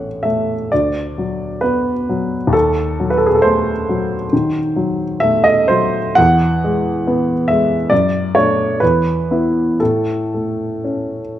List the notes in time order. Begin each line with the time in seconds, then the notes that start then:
Already playing: A1 A3 C#4 F#5
0.23 A3 E5
0.72 D2 D5
1.18 F#3
1.61 B3 B4
2.09 F#3
2.47 D#2
2.53 A4
3.00 F#3
3.10 B4
3.18 A4
3.26 G#4
3.35 A4
3.42 A3 C5
3.89 F#3
4.33 D#3
4.76 F#3
5.20 A3 E5
5.44 D#5
5.68 F#3 C5
6.15 E2 F#5
6.64 G#3
7.07 B3
7.48 G#3 E5
7.90 F#2 D5
8.35 A3 D4 C#5
8.80 E2 B4
9.31 B3 E4
9.80 A2 A4
10.34 A3
10.84 C#4